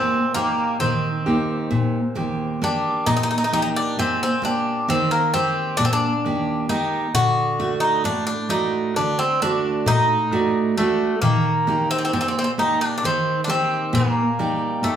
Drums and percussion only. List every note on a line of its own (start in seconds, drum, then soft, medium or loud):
0.36 darbuka tek medium
0.59 darbuka tek soft
0.82 darbuka tek medium
0.82 darbuka dum medium
1.05 darbuka tek soft
1.27 darbuka tek medium
1.72 darbuka dum medium
2.17 darbuka tek medium
2.40 darbuka tek soft
2.62 darbuka tek medium
2.85 darbuka tek soft
3.07 darbuka dum medium
3.53 darbuka tek medium
3.98 darbuka tek medium
4.43 darbuka tek medium
4.89 darbuka tek medium
5.34 darbuka tek medium
5.57 darbuka tek soft
5.80 darbuka dum medium
6.25 darbuka tek medium
6.70 darbuka tek medium
7.14 darbuka dum medium
7.61 darbuka tek medium
8.05 darbuka tek medium
8.50 darbuka tek medium
8.94 darbuka tek medium
9.18 darbuka tek soft
9.40 darbuka tek medium
9.64 darbuka tek soft
9.86 darbuka dum loud
10.31 darbuka tek medium
10.77 darbuka tek medium
11.22 darbuka dum loud
11.67 darbuka tek medium
12.13 darbuka tek medium
12.59 darbuka tek medium
13.03 darbuka tek medium
13.27 darbuka tek soft
13.48 darbuka tek medium
13.72 darbuka tek soft
13.94 darbuka dum loud
14.39 darbuka tek medium
14.84 darbuka tek medium